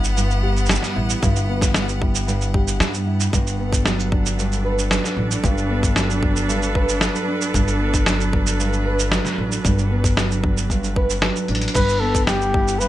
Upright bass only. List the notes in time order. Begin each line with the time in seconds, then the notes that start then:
Already playing: G1
0.96 A1
1.23 G1
2.80 G2
3.33 G1
5.17 A1
5.44 G1
7.54 G1
9.38 A1
9.65 G1
11.49 A1
11.75 G1